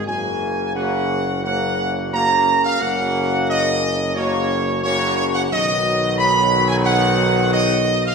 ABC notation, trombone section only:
X:1
M:4/4
L:1/8
Q:1/4=88
K:Gblyd
V:1 name="Trombone section" clef=bass
[D,B,]2 [D,B,]2 [D,B,]2 [D,B,]2 | [D,B,]4 [D,B,]2 [D,B,]2 | [E,G,]8 |]